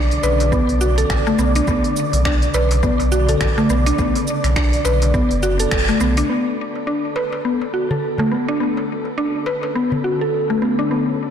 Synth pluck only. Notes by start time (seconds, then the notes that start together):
0.23 B4
0.52 B3
0.81 F#4
0.98 A4
1.27 A3
1.39 B3
1.56 D4
1.68 B3
2.25 D4
2.54 B4
2.83 B3
3.12 F#4
3.29 A4
3.58 A3
3.70 B3
3.86 D4
3.99 B3
4.56 D4
4.85 B4
5.14 B3
5.43 F#4
5.60 A4
5.89 A3
6.01 B3
6.18 D4
6.29 B3
6.87 D4
7.16 B4
7.45 B3
7.74 F#4
7.91 A4
8.19 A3
8.31 B3
8.48 D4
8.60 B3
9.18 D4
9.47 B4
9.75 B3
10.04 F#4
10.21 A4
10.50 A3
10.62 B3
10.79 D4
10.91 B3